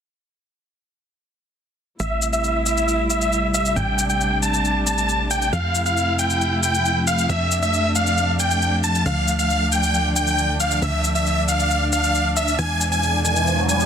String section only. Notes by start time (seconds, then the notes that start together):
2.00 C3 G3 A3 E4
3.76 D4
5.53 F3 E4
7.29 D4
9.06 D3 D4
12.59 B2 E3 G#3